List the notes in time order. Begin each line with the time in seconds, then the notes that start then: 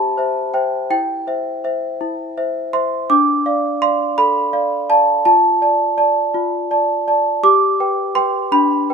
Already playing: C4 G4 C5 E5 A5 B5 C6
0.18 C5 E5
0.54 C5 E5 G5
0.90 E4 G5
1.27 C5 E5
1.64 C5 E5
2.01 E4
2.37 C5 E5
2.73 C5 E5 C6
3.10 D4 D6
3.46 D5 F5
3.82 D5 F5 C6
4.18 A4 B5
4.53 D5 F5
4.89 D5 F5 A5
5.25 F4 A5
5.62 D5 A5
5.97 D5 A5
6.34 F4
6.71 D5 A5
7.08 D5 A5
7.43 G4 D6
7.80 B4 G5
8.15 B4 G5 C6
8.52 D4 B5
8.90 B4 G5